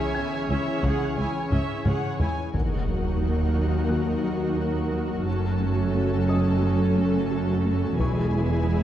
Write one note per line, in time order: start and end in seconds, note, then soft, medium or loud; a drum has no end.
0.00 2.50 E3 medium
0.00 2.20 C#4 medium
0.00 2.50 E4 medium
0.00 0.13 G#4 medium
0.00 2.50 G#4 medium
0.00 2.30 C#5 medium
0.00 2.54 C#5 medium
0.00 0.39 E5 medium
0.00 0.39 G#5 medium
0.15 2.16 G#5 soft
0.15 2.15 G#6 soft
0.49 0.57 C#2 soft
0.49 0.70 E3 medium
0.49 0.58 C#4 soft
0.49 0.81 E5 soft
0.83 0.91 C#2 medium
0.83 0.91 C#2 soft
0.83 1.04 C#3 medium
0.83 1.16 G#4 medium
0.83 1.18 F#5 medium
0.83 taiko medium
1.17 1.25 C#2 soft
1.17 1.26 C#2 soft
1.17 1.38 C#4 soft
1.17 1.27 E4 soft
1.17 1.51 G#5 medium
1.52 1.60 C#2 soft
1.52 1.72 C#4 medium
1.52 1.60 C#4 soft
1.52 1.85 E5 soft
1.52 taiko low-mid medium
1.85 1.94 C#2 soft
1.85 1.94 C#2 medium
1.85 2.06 C#3 medium
1.85 2.17 G#4 soft
1.85 2.19 F#5 medium
1.85 taiko low-mid medium
2.20 2.28 C#2 soft
2.20 2.40 G#3 medium
2.20 2.28 E4 soft
2.20 2.53 G#5 soft
2.20 taiko low medium
2.53 5.23 D#2 soft
2.53 2.75 D#3 medium
2.53 7.95 F#3 medium
2.53 5.23 F#3 soft
2.53 5.22 A#3 soft
2.53 5.22 D#4 medium
2.53 5.23 D#4 soft
2.53 7.95 F#4 medium
2.53 7.96 F#4 soft
2.53 5.22 A#4 soft
2.53 5.23 A#4 soft
2.53 5.23 F#5 soft
2.53 taiko soft
2.53 impact soft
2.88 3.08 F#3 soft
3.22 3.43 F#3 soft
3.56 3.77 D#4 soft
3.89 4.11 D#3 medium
3.89 5.90 F#6 soft
4.24 4.45 F#3 soft
4.58 4.79 D#4 soft
4.92 5.13 F#3 soft
5.26 7.95 F#1 soft
5.26 7.96 F#2 soft
5.26 5.47 F#3 medium
5.26 7.95 A3 soft
5.26 7.99 C#4 medium
5.26 7.95 C#4 soft
5.26 7.96 C#4 soft
5.26 7.99 A4 medium
5.26 7.95 A4 soft
5.26 7.95 A5 soft
5.60 5.81 A3 medium
5.94 6.15 A3 soft
6.29 6.49 F#4 medium
6.29 8.30 D#5 soft
6.29 8.30 D#6 soft
6.63 6.83 F#3 medium
6.97 7.17 A3 soft
7.31 7.52 F#4 medium
7.65 7.86 A3 medium
7.99 8.83 E1 medium
7.99 8.83 E2 medium
7.99 8.20 E3 medium
7.99 8.83 G#3 medium
7.99 8.83 G#3 soft
7.99 8.83 B3 medium
7.99 8.83 E4 medium
7.99 8.83 E4 soft
7.99 8.83 G#4 medium
7.99 8.83 B4 soft
7.99 8.83 G#5 medium
7.99 8.83 C#6 soft
7.99 taiko medium
8.34 8.54 G#3 soft
8.68 8.83 G#3 medium